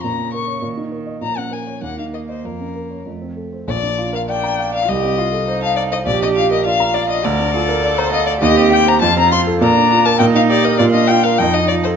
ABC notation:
X:1
M:2/4
L:1/16
Q:1/4=101
K:Bbm
V:1 name="Violin"
b2 d'2 z4 | b g a2 g f e c | B4 z4 | [K:Bb] d3 f g3 f |
e4- e f d e | d e f e f2 d e | d4- d c e d | e2 g b a b c'2 |
b3 a g f d e | d e g f g e d c |]
V:2 name="Grand piano"
B,, D B d B,, E B e | B,, D B d E,, E B e | F,, D B d F,, C =A c | [K:Bb] B,,, D F B d b f d |
C,, C F A c a f c | B,,, D F B d b f d | D,, D F B d b f d | E,, C G c F,, C F A |
B,, D F B B,, E G B | B,, D F B F,, E F A |]
V:3 name="Cello"
D,4 E,4 | F,4 B,4- | B,4 =A,2 z2 | [K:Bb] z4 D4 |
G2 F2 E4 | G4 F4 | B2 A6 | G4 F4 |
D4 E4 | F4 E4 |]